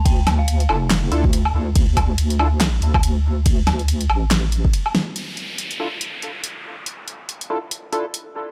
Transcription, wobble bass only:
X:1
M:4/4
L:1/8
Q:"Swing 16ths" 1/4=141
K:Dm
V:1 name="Wobble bass" clef=bass
D,,3 F,,,2 D,,2 D,, | D,,2 D,,3 D,,3- | D,,3 A,,,3 z2 | z8 |
z8 |]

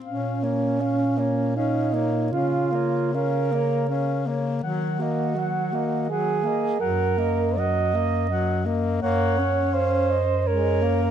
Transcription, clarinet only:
X:1
M:3/4
L:1/8
Q:1/4=82
K:Bbm
V:1 name="Clarinet"
f d f d f d | f d f d f d | g e g e g e | g e g e g e |
[K:Gblyd] g2 f e d2 |]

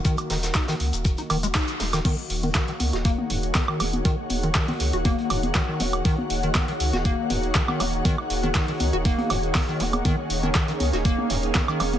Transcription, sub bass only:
X:1
M:4/4
L:1/16
Q:1/4=120
K:Ebm
V:1 name="Sub bass" clef=bass
z2 E,,,2 z2 D,, E,,,2 z E,,,2 z2 E,,,2 | z2 E,,,2 z2 D,, E,,,2 z E,,,2 z2 E,,,2 | z2 E,,,2 z2 D,, E,,,2 z E,,,2 z2 E,,,2 | z2 E,,,2 z2 D,, E,,,2 z E,,,2 z2 E,,,2 |
z2 E,,,2 z2 D,, E,,,2 z E,,,2 z2 E,,,2 | z2 E,,,2 z2 D,, E,,,2 z E,,,2 z2 E,,,2 |]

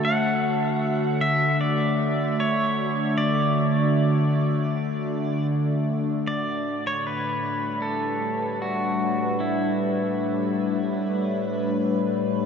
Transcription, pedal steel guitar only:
X:1
M:4/4
L:1/16
Q:1/4=77
K:Amix
V:1 name="Pedal steel guitar"
f6 e2 d4 c4 | d12 z4 | d3 c B4 A4 F4 | E12 z4 |]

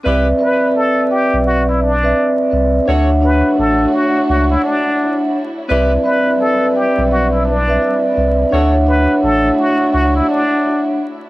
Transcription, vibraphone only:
X:1
M:4/4
L:1/16
Q:"Swing 16ths" 1/4=85
K:D
V:1 name="Vibraphone"
[=CBde]2 [CBde]8 z [CBde] [CBde]2 [CBde]2 | [Dcef]2 [Dcef]12 z2 | [=CBde]2 [CBde]8 z [CBde] [CBde]2 [CBde]2 | [Dcef]2 [Dcef]12 z2 |]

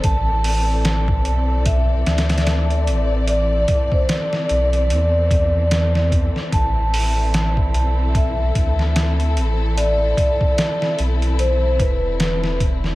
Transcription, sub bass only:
X:1
M:4/4
L:1/8
Q:"Swing 16ths" 1/4=74
K:Am
V:1 name="Sub bass" clef=bass
A,,,3 B,,,2 D,,2 A,,,- | A,,, z2 B,,, E,,3 z | A,,,3 B,,,2 D,,2 A,,,- | A,,, z2 B,,,2 E,,,3 |]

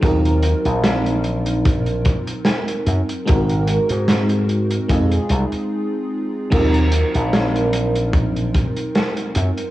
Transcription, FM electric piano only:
X:1
M:4/4
L:1/8
Q:"Swing 16ths" 1/4=74
K:Ebdor
V:1 name="FM electric piano"
[G,CEFB]8 | [A,CEGB]4 [A,CEFA]2 z2 | [G,CEFB]8 |]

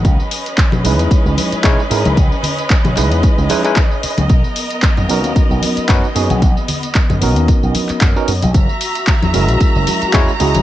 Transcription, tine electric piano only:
X:1
M:4/4
L:1/16
Q:"Swing 16ths" 1/4=113
K:B
V:1 name="Tine electric piano"
z6 [G,CDEB]6 [G,CDEc] z [G,CDEA]2 | z6 [G,CDEB]4 [G,CDEB] [G,CDEB] z4 | z6 [B,CDFA]6 [B,CDFB] z [B,CDFG]2 | z6 [B,CDFA]6- [B,CDFA] [B,CDFA] z2 |
z6 [G,CEFA]6 [G,CEFc] z [G,CEFG]2 |]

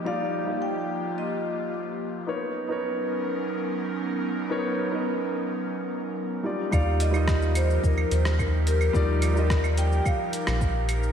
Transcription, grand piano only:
X:1
M:4/4
L:1/16
Q:1/4=108
K:Eb
V:1 name="Grand piano"
[G,EFd]3 [G,EFe]12- [G,EFe] | [=B,^D^A^c]3 [B,DAc]12- [B,DAc] | [=B,^D^A^c]3 [B,DA^d]8- [B,DAd]3 [G,EF=d]2 | [G,EFd]3 [G,EFe]12- [G,EFe] |
[G,EFd]3 [G,EFe]12- [G,EFe] |]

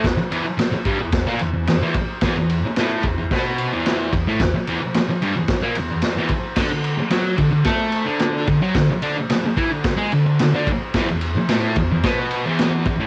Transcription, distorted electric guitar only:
X:1
M:4/4
L:1/16
Q:1/4=110
K:Dlyd
V:1 name="Distorted electric guitar" clef=bass
E,, z [E,,E,] z3 [=G,,=G,] E,,2 [^A,,^A,] E,, E,, E,, [E,,E,] z2 | [E,,E,] E,,2 z [A,,A,]2 E,, E,, [B,,B,]3 [E,,E,]3 E,, [A,,A,] | E,, z [E,,E,] z3 [=G,,=G,] E,,2 [^A,,^A,] E,, E,, E,, [E,,E,] z2 | [D,D] D,2 z [F,F]2 D, D, [A,A]3 [D,D]3 D, [F,F] |
D, z [D,D] z3 [E,E] D,2 [G,G] D, D, D, [D,D] z2 | [E,,E,] E,,2 z [A,,A,]2 E,, E,, [B,,B,]3 [E,,E,]3 E,, [A,,A,] |]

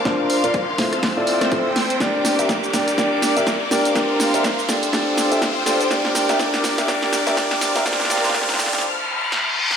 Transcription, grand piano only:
X:1
M:4/4
L:1/16
Q:"Swing 16ths" 1/4=123
K:Bblyd
V:1 name="Grand piano"
[DFBc]3 [DFBd] z2 [EFAc] z2 [EFAd]3 [EFAc] z3 | [DGBd]3 [DGBe] z2 [DGBd] z [DGBd]3 [DGBe] z2 [DGBd] z | [DGBd]3 [DGBe] z2 [DGAd] z [DGAd]3 [DGAe] z2 [DGAd] z | [DGBd]3 [DGBe] [DGBd]3 [DGBe] [DGBd]3 [DGBe] [DGBd]3 [DGBe] |
[DGBd]2 [DGBd]2 [DGBd]2 [DGAd]2 z8 |]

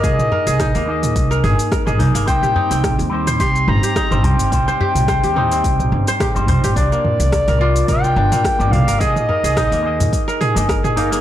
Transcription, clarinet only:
X:1
M:4/4
L:1/16
Q:"Swing 16ths" 1/4=107
K:Cm
V:1 name="Clarinet"
e12- e2 z2 | g6 z2 c'2 b4 g2- | g12- g2 z2 | d8 g6 f2 |
e12 z2 B A |]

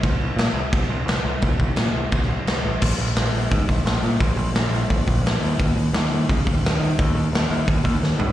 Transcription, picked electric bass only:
X:1
M:4/4
L:1/8
Q:1/4=173
K:Bbdor
V:1 name="Picked electric bass" clef=bass
C,, C,, B,, C,, C,, C,, C,, C,, | C,, C,, B,, C,, C,, C,, C,, =A,,, | B,,, B,,, B,,, B,,, A,, B,,, B,,, B,, | B,,, B,,, B,,, B,,, B,,, B,,, B,,, E,, |
E,, E,, E,, E,, D, E,, E,, E, | E,, E,, E,, E,, E,, E,, E,, A,, |]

